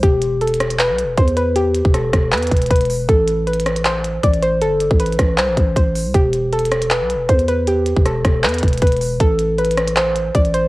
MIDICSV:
0, 0, Header, 1, 4, 480
1, 0, Start_track
1, 0, Key_signature, 0, "minor"
1, 0, Tempo, 382166
1, 38, Time_signature, 4, 2, 24, 8
1, 13415, End_track
2, 0, Start_track
2, 0, Title_t, "Synth pluck"
2, 0, Program_c, 0, 84
2, 38, Note_on_c, 0, 67, 105
2, 489, Note_off_c, 0, 67, 0
2, 519, Note_on_c, 0, 69, 88
2, 970, Note_off_c, 0, 69, 0
2, 998, Note_on_c, 0, 71, 88
2, 1449, Note_off_c, 0, 71, 0
2, 1478, Note_on_c, 0, 72, 82
2, 1690, Note_off_c, 0, 72, 0
2, 1717, Note_on_c, 0, 71, 96
2, 1930, Note_off_c, 0, 71, 0
2, 1958, Note_on_c, 0, 67, 107
2, 2409, Note_off_c, 0, 67, 0
2, 2439, Note_on_c, 0, 69, 75
2, 2890, Note_off_c, 0, 69, 0
2, 2918, Note_on_c, 0, 71, 88
2, 3369, Note_off_c, 0, 71, 0
2, 3399, Note_on_c, 0, 71, 83
2, 3850, Note_off_c, 0, 71, 0
2, 3877, Note_on_c, 0, 69, 108
2, 4329, Note_off_c, 0, 69, 0
2, 4358, Note_on_c, 0, 71, 78
2, 4809, Note_off_c, 0, 71, 0
2, 4839, Note_on_c, 0, 72, 88
2, 5290, Note_off_c, 0, 72, 0
2, 5318, Note_on_c, 0, 74, 84
2, 5530, Note_off_c, 0, 74, 0
2, 5558, Note_on_c, 0, 72, 95
2, 5770, Note_off_c, 0, 72, 0
2, 5798, Note_on_c, 0, 69, 113
2, 6249, Note_off_c, 0, 69, 0
2, 6278, Note_on_c, 0, 71, 81
2, 6729, Note_off_c, 0, 71, 0
2, 6759, Note_on_c, 0, 72, 86
2, 7210, Note_off_c, 0, 72, 0
2, 7241, Note_on_c, 0, 72, 80
2, 7691, Note_off_c, 0, 72, 0
2, 7721, Note_on_c, 0, 67, 106
2, 8171, Note_off_c, 0, 67, 0
2, 8198, Note_on_c, 0, 69, 88
2, 8649, Note_off_c, 0, 69, 0
2, 8676, Note_on_c, 0, 71, 87
2, 9128, Note_off_c, 0, 71, 0
2, 9159, Note_on_c, 0, 72, 84
2, 9371, Note_off_c, 0, 72, 0
2, 9399, Note_on_c, 0, 71, 99
2, 9611, Note_off_c, 0, 71, 0
2, 9640, Note_on_c, 0, 67, 106
2, 10090, Note_off_c, 0, 67, 0
2, 10120, Note_on_c, 0, 69, 79
2, 10570, Note_off_c, 0, 69, 0
2, 10596, Note_on_c, 0, 71, 87
2, 11048, Note_off_c, 0, 71, 0
2, 11080, Note_on_c, 0, 71, 82
2, 11530, Note_off_c, 0, 71, 0
2, 11559, Note_on_c, 0, 69, 109
2, 12010, Note_off_c, 0, 69, 0
2, 12038, Note_on_c, 0, 71, 81
2, 12489, Note_off_c, 0, 71, 0
2, 12519, Note_on_c, 0, 72, 92
2, 12970, Note_off_c, 0, 72, 0
2, 13000, Note_on_c, 0, 74, 85
2, 13211, Note_off_c, 0, 74, 0
2, 13238, Note_on_c, 0, 72, 99
2, 13415, Note_off_c, 0, 72, 0
2, 13415, End_track
3, 0, Start_track
3, 0, Title_t, "808-style bass"
3, 0, Program_c, 1, 38
3, 37, Note_on_c, 1, 28, 107
3, 1124, Note_on_c, 1, 35, 99
3, 1143, Note_off_c, 1, 28, 0
3, 1301, Note_on_c, 1, 28, 99
3, 1320, Note_off_c, 1, 35, 0
3, 1469, Note_off_c, 1, 28, 0
3, 1476, Note_on_c, 1, 40, 105
3, 2290, Note_off_c, 1, 40, 0
3, 2324, Note_on_c, 1, 28, 99
3, 2663, Note_off_c, 1, 28, 0
3, 2679, Note_on_c, 1, 28, 102
3, 2917, Note_on_c, 1, 40, 94
3, 2936, Note_off_c, 1, 28, 0
3, 3146, Note_off_c, 1, 40, 0
3, 3157, Note_on_c, 1, 28, 101
3, 3388, Note_off_c, 1, 28, 0
3, 3396, Note_on_c, 1, 28, 107
3, 3858, Note_off_c, 1, 28, 0
3, 3878, Note_on_c, 1, 33, 112
3, 5268, Note_off_c, 1, 33, 0
3, 5317, Note_on_c, 1, 33, 106
3, 5798, Note_on_c, 1, 31, 100
3, 5817, Note_off_c, 1, 33, 0
3, 6147, Note_off_c, 1, 31, 0
3, 6165, Note_on_c, 1, 33, 101
3, 6504, Note_off_c, 1, 33, 0
3, 6519, Note_on_c, 1, 33, 109
3, 6757, Note_on_c, 1, 36, 97
3, 6776, Note_off_c, 1, 33, 0
3, 6885, Note_on_c, 1, 33, 100
3, 6904, Note_off_c, 1, 36, 0
3, 6992, Note_off_c, 1, 33, 0
3, 6997, Note_on_c, 1, 33, 105
3, 7228, Note_off_c, 1, 33, 0
3, 7238, Note_on_c, 1, 33, 104
3, 7604, Note_on_c, 1, 36, 101
3, 7623, Note_off_c, 1, 33, 0
3, 7712, Note_off_c, 1, 36, 0
3, 7717, Note_on_c, 1, 28, 107
3, 8804, Note_on_c, 1, 35, 96
3, 8823, Note_off_c, 1, 28, 0
3, 8981, Note_on_c, 1, 28, 101
3, 9000, Note_off_c, 1, 35, 0
3, 9149, Note_off_c, 1, 28, 0
3, 9156, Note_on_c, 1, 40, 102
3, 9970, Note_off_c, 1, 40, 0
3, 10004, Note_on_c, 1, 28, 101
3, 10343, Note_off_c, 1, 28, 0
3, 10358, Note_on_c, 1, 28, 104
3, 10598, Note_on_c, 1, 40, 94
3, 10617, Note_off_c, 1, 28, 0
3, 10826, Note_off_c, 1, 40, 0
3, 10838, Note_on_c, 1, 28, 107
3, 11068, Note_off_c, 1, 28, 0
3, 11077, Note_on_c, 1, 28, 109
3, 11538, Note_off_c, 1, 28, 0
3, 11558, Note_on_c, 1, 33, 115
3, 12947, Note_off_c, 1, 33, 0
3, 12997, Note_on_c, 1, 33, 109
3, 13415, Note_off_c, 1, 33, 0
3, 13415, End_track
4, 0, Start_track
4, 0, Title_t, "Drums"
4, 37, Note_on_c, 9, 36, 111
4, 37, Note_on_c, 9, 42, 77
4, 163, Note_off_c, 9, 36, 0
4, 163, Note_off_c, 9, 42, 0
4, 272, Note_on_c, 9, 42, 84
4, 398, Note_off_c, 9, 42, 0
4, 517, Note_on_c, 9, 42, 46
4, 596, Note_off_c, 9, 42, 0
4, 596, Note_on_c, 9, 42, 63
4, 677, Note_off_c, 9, 42, 0
4, 677, Note_on_c, 9, 42, 77
4, 757, Note_off_c, 9, 42, 0
4, 757, Note_on_c, 9, 37, 104
4, 757, Note_on_c, 9, 42, 71
4, 882, Note_off_c, 9, 42, 0
4, 883, Note_off_c, 9, 37, 0
4, 884, Note_on_c, 9, 42, 73
4, 995, Note_on_c, 9, 39, 120
4, 1000, Note_off_c, 9, 42, 0
4, 1000, Note_on_c, 9, 42, 81
4, 1120, Note_off_c, 9, 39, 0
4, 1126, Note_off_c, 9, 42, 0
4, 1237, Note_on_c, 9, 42, 83
4, 1363, Note_off_c, 9, 42, 0
4, 1476, Note_on_c, 9, 36, 92
4, 1476, Note_on_c, 9, 42, 76
4, 1602, Note_off_c, 9, 36, 0
4, 1602, Note_off_c, 9, 42, 0
4, 1604, Note_on_c, 9, 42, 43
4, 1718, Note_off_c, 9, 42, 0
4, 1718, Note_on_c, 9, 42, 73
4, 1844, Note_off_c, 9, 42, 0
4, 1957, Note_on_c, 9, 42, 76
4, 2082, Note_off_c, 9, 42, 0
4, 2193, Note_on_c, 9, 42, 82
4, 2319, Note_off_c, 9, 42, 0
4, 2324, Note_on_c, 9, 36, 96
4, 2438, Note_on_c, 9, 37, 68
4, 2439, Note_on_c, 9, 42, 76
4, 2449, Note_off_c, 9, 36, 0
4, 2564, Note_off_c, 9, 37, 0
4, 2564, Note_off_c, 9, 42, 0
4, 2678, Note_on_c, 9, 36, 89
4, 2678, Note_on_c, 9, 37, 104
4, 2679, Note_on_c, 9, 42, 82
4, 2803, Note_off_c, 9, 37, 0
4, 2804, Note_off_c, 9, 36, 0
4, 2805, Note_off_c, 9, 42, 0
4, 2916, Note_on_c, 9, 39, 119
4, 2917, Note_on_c, 9, 42, 48
4, 2982, Note_off_c, 9, 42, 0
4, 2982, Note_on_c, 9, 42, 60
4, 3042, Note_off_c, 9, 39, 0
4, 3045, Note_off_c, 9, 42, 0
4, 3045, Note_on_c, 9, 42, 68
4, 3101, Note_off_c, 9, 42, 0
4, 3101, Note_on_c, 9, 42, 81
4, 3157, Note_on_c, 9, 36, 89
4, 3158, Note_off_c, 9, 42, 0
4, 3158, Note_on_c, 9, 42, 64
4, 3222, Note_off_c, 9, 42, 0
4, 3222, Note_on_c, 9, 42, 64
4, 3283, Note_off_c, 9, 36, 0
4, 3286, Note_off_c, 9, 42, 0
4, 3286, Note_on_c, 9, 42, 63
4, 3342, Note_off_c, 9, 42, 0
4, 3342, Note_on_c, 9, 42, 63
4, 3397, Note_on_c, 9, 36, 91
4, 3398, Note_off_c, 9, 42, 0
4, 3398, Note_on_c, 9, 42, 75
4, 3462, Note_off_c, 9, 42, 0
4, 3462, Note_on_c, 9, 42, 65
4, 3522, Note_off_c, 9, 36, 0
4, 3525, Note_off_c, 9, 42, 0
4, 3525, Note_on_c, 9, 42, 53
4, 3582, Note_off_c, 9, 42, 0
4, 3582, Note_on_c, 9, 42, 43
4, 3639, Note_on_c, 9, 46, 75
4, 3708, Note_off_c, 9, 42, 0
4, 3764, Note_off_c, 9, 46, 0
4, 3877, Note_on_c, 9, 36, 115
4, 3878, Note_on_c, 9, 42, 75
4, 4003, Note_off_c, 9, 36, 0
4, 4004, Note_off_c, 9, 42, 0
4, 4114, Note_on_c, 9, 42, 77
4, 4240, Note_off_c, 9, 42, 0
4, 4359, Note_on_c, 9, 42, 47
4, 4439, Note_off_c, 9, 42, 0
4, 4439, Note_on_c, 9, 42, 62
4, 4518, Note_off_c, 9, 42, 0
4, 4518, Note_on_c, 9, 42, 81
4, 4598, Note_off_c, 9, 42, 0
4, 4598, Note_on_c, 9, 37, 98
4, 4598, Note_on_c, 9, 42, 70
4, 4723, Note_off_c, 9, 42, 0
4, 4724, Note_off_c, 9, 37, 0
4, 4725, Note_on_c, 9, 42, 71
4, 4836, Note_on_c, 9, 39, 118
4, 4841, Note_off_c, 9, 42, 0
4, 4841, Note_on_c, 9, 42, 80
4, 4962, Note_off_c, 9, 39, 0
4, 4967, Note_off_c, 9, 42, 0
4, 5079, Note_on_c, 9, 42, 82
4, 5204, Note_off_c, 9, 42, 0
4, 5317, Note_on_c, 9, 36, 93
4, 5317, Note_on_c, 9, 42, 78
4, 5443, Note_off_c, 9, 36, 0
4, 5443, Note_off_c, 9, 42, 0
4, 5445, Note_on_c, 9, 42, 42
4, 5558, Note_off_c, 9, 42, 0
4, 5558, Note_on_c, 9, 42, 73
4, 5683, Note_off_c, 9, 42, 0
4, 5797, Note_on_c, 9, 42, 77
4, 5923, Note_off_c, 9, 42, 0
4, 6033, Note_on_c, 9, 42, 80
4, 6159, Note_off_c, 9, 42, 0
4, 6164, Note_on_c, 9, 36, 96
4, 6277, Note_on_c, 9, 42, 77
4, 6290, Note_off_c, 9, 36, 0
4, 6358, Note_off_c, 9, 42, 0
4, 6358, Note_on_c, 9, 42, 60
4, 6437, Note_off_c, 9, 42, 0
4, 6437, Note_on_c, 9, 42, 47
4, 6518, Note_on_c, 9, 36, 88
4, 6518, Note_on_c, 9, 37, 102
4, 6519, Note_off_c, 9, 42, 0
4, 6519, Note_on_c, 9, 42, 85
4, 6643, Note_off_c, 9, 37, 0
4, 6644, Note_off_c, 9, 36, 0
4, 6645, Note_off_c, 9, 42, 0
4, 6756, Note_on_c, 9, 39, 123
4, 6762, Note_on_c, 9, 42, 79
4, 6882, Note_off_c, 9, 39, 0
4, 6887, Note_off_c, 9, 42, 0
4, 6997, Note_on_c, 9, 36, 88
4, 6999, Note_on_c, 9, 42, 74
4, 7123, Note_off_c, 9, 36, 0
4, 7125, Note_off_c, 9, 42, 0
4, 7237, Note_on_c, 9, 36, 89
4, 7243, Note_on_c, 9, 42, 75
4, 7363, Note_off_c, 9, 36, 0
4, 7369, Note_off_c, 9, 42, 0
4, 7479, Note_on_c, 9, 46, 78
4, 7604, Note_off_c, 9, 46, 0
4, 7716, Note_on_c, 9, 42, 79
4, 7717, Note_on_c, 9, 36, 112
4, 7842, Note_off_c, 9, 36, 0
4, 7842, Note_off_c, 9, 42, 0
4, 7952, Note_on_c, 9, 42, 81
4, 8078, Note_off_c, 9, 42, 0
4, 8197, Note_on_c, 9, 42, 46
4, 8277, Note_off_c, 9, 42, 0
4, 8277, Note_on_c, 9, 42, 60
4, 8357, Note_off_c, 9, 42, 0
4, 8357, Note_on_c, 9, 42, 76
4, 8436, Note_off_c, 9, 42, 0
4, 8436, Note_on_c, 9, 42, 74
4, 8437, Note_on_c, 9, 37, 101
4, 8562, Note_off_c, 9, 37, 0
4, 8562, Note_off_c, 9, 42, 0
4, 8564, Note_on_c, 9, 42, 71
4, 8675, Note_on_c, 9, 39, 116
4, 8681, Note_off_c, 9, 42, 0
4, 8681, Note_on_c, 9, 42, 79
4, 8801, Note_off_c, 9, 39, 0
4, 8806, Note_off_c, 9, 42, 0
4, 8918, Note_on_c, 9, 42, 77
4, 9044, Note_off_c, 9, 42, 0
4, 9156, Note_on_c, 9, 36, 92
4, 9157, Note_on_c, 9, 42, 73
4, 9282, Note_off_c, 9, 36, 0
4, 9283, Note_off_c, 9, 42, 0
4, 9283, Note_on_c, 9, 42, 43
4, 9398, Note_off_c, 9, 42, 0
4, 9398, Note_on_c, 9, 42, 69
4, 9524, Note_off_c, 9, 42, 0
4, 9637, Note_on_c, 9, 42, 76
4, 9763, Note_off_c, 9, 42, 0
4, 9873, Note_on_c, 9, 42, 81
4, 9998, Note_off_c, 9, 42, 0
4, 10004, Note_on_c, 9, 36, 96
4, 10117, Note_on_c, 9, 37, 70
4, 10118, Note_on_c, 9, 42, 75
4, 10129, Note_off_c, 9, 36, 0
4, 10243, Note_off_c, 9, 37, 0
4, 10244, Note_off_c, 9, 42, 0
4, 10357, Note_on_c, 9, 37, 102
4, 10358, Note_on_c, 9, 36, 92
4, 10359, Note_on_c, 9, 42, 85
4, 10483, Note_off_c, 9, 37, 0
4, 10484, Note_off_c, 9, 36, 0
4, 10484, Note_off_c, 9, 42, 0
4, 10597, Note_on_c, 9, 39, 124
4, 10598, Note_on_c, 9, 42, 50
4, 10661, Note_off_c, 9, 42, 0
4, 10661, Note_on_c, 9, 42, 60
4, 10723, Note_off_c, 9, 39, 0
4, 10725, Note_off_c, 9, 42, 0
4, 10725, Note_on_c, 9, 42, 71
4, 10782, Note_off_c, 9, 42, 0
4, 10782, Note_on_c, 9, 42, 82
4, 10838, Note_on_c, 9, 36, 89
4, 10839, Note_off_c, 9, 42, 0
4, 10839, Note_on_c, 9, 42, 63
4, 10901, Note_off_c, 9, 42, 0
4, 10901, Note_on_c, 9, 42, 64
4, 10963, Note_off_c, 9, 36, 0
4, 10965, Note_off_c, 9, 42, 0
4, 10965, Note_on_c, 9, 42, 63
4, 11022, Note_off_c, 9, 42, 0
4, 11022, Note_on_c, 9, 42, 60
4, 11076, Note_off_c, 9, 42, 0
4, 11076, Note_on_c, 9, 42, 75
4, 11077, Note_on_c, 9, 36, 92
4, 11141, Note_off_c, 9, 42, 0
4, 11141, Note_on_c, 9, 42, 66
4, 11203, Note_off_c, 9, 36, 0
4, 11205, Note_off_c, 9, 42, 0
4, 11205, Note_on_c, 9, 42, 53
4, 11261, Note_off_c, 9, 42, 0
4, 11261, Note_on_c, 9, 42, 43
4, 11318, Note_on_c, 9, 46, 79
4, 11387, Note_off_c, 9, 42, 0
4, 11444, Note_off_c, 9, 46, 0
4, 11557, Note_on_c, 9, 36, 120
4, 11557, Note_on_c, 9, 42, 78
4, 11683, Note_off_c, 9, 36, 0
4, 11683, Note_off_c, 9, 42, 0
4, 11793, Note_on_c, 9, 42, 83
4, 11918, Note_off_c, 9, 42, 0
4, 12037, Note_on_c, 9, 42, 47
4, 12116, Note_off_c, 9, 42, 0
4, 12116, Note_on_c, 9, 42, 65
4, 12195, Note_off_c, 9, 42, 0
4, 12195, Note_on_c, 9, 42, 80
4, 12277, Note_off_c, 9, 42, 0
4, 12277, Note_on_c, 9, 37, 105
4, 12277, Note_on_c, 9, 42, 75
4, 12402, Note_off_c, 9, 42, 0
4, 12403, Note_off_c, 9, 37, 0
4, 12403, Note_on_c, 9, 42, 75
4, 12516, Note_on_c, 9, 39, 118
4, 12521, Note_off_c, 9, 42, 0
4, 12521, Note_on_c, 9, 42, 85
4, 12642, Note_off_c, 9, 39, 0
4, 12647, Note_off_c, 9, 42, 0
4, 12758, Note_on_c, 9, 42, 83
4, 12884, Note_off_c, 9, 42, 0
4, 12997, Note_on_c, 9, 36, 93
4, 12998, Note_on_c, 9, 42, 76
4, 13122, Note_off_c, 9, 36, 0
4, 13123, Note_off_c, 9, 42, 0
4, 13125, Note_on_c, 9, 42, 43
4, 13239, Note_off_c, 9, 42, 0
4, 13239, Note_on_c, 9, 42, 73
4, 13365, Note_off_c, 9, 42, 0
4, 13415, End_track
0, 0, End_of_file